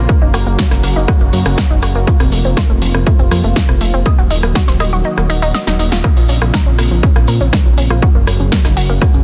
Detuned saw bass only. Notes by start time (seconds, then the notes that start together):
0.22 F#1
0.34 F#1
0.47 F#1
0.71 F#1
0.83 F#1
0.96 F#1
1.21 F#1
1.33 F#2
1.46 F#1
1.70 F#1
1.83 F#1
1.95 F#1
2.20 F1
2.32 F1
2.45 F1
2.70 F1
2.82 F1
2.94 F1
3.19 F1
3.31 F2
3.44 F1
3.69 F1
3.81 F1
3.94 F1
4.18 D#1
4.30 D#1
4.43 D#1
4.68 D#1
4.80 D#1
4.93 D#1
5.18 D#1
5.30 D#1
5.42 D#1
5.67 D#1
5.79 D#1
5.92 D#1
6.17 A#1
6.29 A#1
6.41 A#1
6.66 A#1
6.78 A#1
6.91 A#1
7.16 A#1
7.28 A#2
7.41 A#1
7.65 A#1
7.78 A#1
7.90 A#1
8.15 F#1
8.27 F#1
8.40 F#1
8.65 F#1
8.77 F#1
8.90 F#1
9.14 F#1